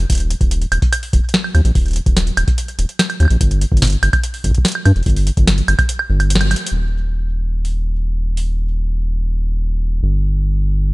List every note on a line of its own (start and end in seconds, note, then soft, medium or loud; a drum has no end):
0.10 0.34 D#1 loud
0.10 kick loud
0.10 closed hi-hat medium
0.12 closed hi-hat medium
0.15 closed hi-hat medium
0.18 closed hi-hat soft
0.20 closed hi-hat soft
0.30 closed hi-hat medium
0.41 0.65 D#1 loud
0.41 kick loud
0.41 closed hi-hat soft
0.51 closed hi-hat medium
0.62 closed hi-hat soft
0.72 0.78 D#1 loud
0.72 closed hi-hat medium
0.72 high woodblock medium
0.82 kick loud
0.82 closed hi-hat soft
0.93 closed hi-hat medium
0.93 high woodblock medium
1.03 open hi-hat medium
1.13 1.20 D#1 loud
1.13 kick loud
1.13 closed hi-hat medium
1.29 closed hi-hat soft
1.34 snare loud
1.44 high woodblock soft
1.55 1.61 D#2 medium
1.55 closed hi-hat soft
1.55 high woodblock soft
1.65 1.71 A#1 medium
1.65 closed hi-hat soft
1.75 2.00 D#1 loud
1.75 kick loud
1.75 open hi-hat medium
1.86 closed hi-hat soft
1.88 closed hi-hat soft
1.91 closed hi-hat soft
1.93 closed hi-hat soft
1.96 closed hi-hat medium
2.06 2.31 D#1 loud
2.06 kick loud
2.06 closed hi-hat soft
2.17 snare loud
2.17 closed hi-hat medium
2.27 closed hi-hat soft
2.37 2.44 D#1 loud
2.37 closed hi-hat medium
2.37 high woodblock medium
2.48 kick loud
2.48 closed hi-hat soft
2.58 closed hi-hat medium
2.68 closed hi-hat soft
2.79 2.85 D#1 loud
2.79 closed hi-hat medium
2.89 closed hi-hat soft
2.99 snare loud
2.99 closed hi-hat medium
2.99 high woodblock medium
3.10 closed hi-hat soft
3.10 high woodblock medium
3.20 3.26 D#2 medium
3.20 closed hi-hat soft
3.20 high woodblock soft
3.23 high woodblock soft
3.25 high woodblock soft
3.28 3.37 A#1 medium
3.28 closed hi-hat soft
3.28 high woodblock soft
3.41 3.65 G1 medium
3.41 kick medium
3.41 closed hi-hat medium
3.51 closed hi-hat soft
3.61 closed hi-hat medium
3.72 3.96 G1 loud
3.72 kick loud
3.77 closed hi-hat soft
3.82 snare loud
3.82 closed hi-hat medium
3.85 closed hi-hat medium
3.87 closed hi-hat medium
3.90 closed hi-hat soft
3.92 closed hi-hat soft
4.03 4.09 G1 loud
4.03 closed hi-hat medium
4.03 high woodblock medium
4.13 kick loud
4.13 closed hi-hat soft
4.13 high woodblock medium
4.24 closed hi-hat medium
4.34 open hi-hat medium
4.44 4.51 G1 loud
4.44 kick soft
4.44 closed hi-hat medium
4.51 kick medium
4.51 closed hi-hat soft
4.58 kick medium
4.65 snare loud
4.65 closed hi-hat medium
4.68 closed hi-hat medium
4.72 closed hi-hat medium
4.72 high woodblock medium
4.85 4.92 G2 medium
4.85 closed hi-hat soft
4.85 high woodblock medium
4.96 5.02 F1 medium
4.96 closed hi-hat soft
5.03 5.31 G1 loud
5.03 kick medium
5.03 closed hi-hat soft
5.03 open hi-hat medium
5.10 closed hi-hat soft
5.16 open hi-hat medium
5.27 closed hi-hat medium
5.37 5.62 G1 loud
5.37 kick loud
5.37 closed hi-hat soft
5.47 snare loud
5.47 closed hi-hat medium
5.58 closed hi-hat soft
5.68 5.75 G1 loud
5.68 closed hi-hat medium
5.68 high woodblock medium
5.79 kick loud
5.79 closed hi-hat soft
5.79 high woodblock medium
5.89 closed hi-hat medium
5.99 high woodblock medium
6.10 6.55 G1 medium
6.20 closed hi-hat soft
6.20 high woodblock medium
6.30 closed hi-hat medium
6.35 snare loud
6.41 closed hi-hat soft
6.41 high woodblock medium
6.51 closed hi-hat medium
6.51 high woodblock medium
6.56 closed hi-hat medium
6.67 closed hi-hat medium
6.72 10.01 D#1 medium
7.65 open hi-hat medium
8.37 open hi-hat medium
10.03 10.94 G1 medium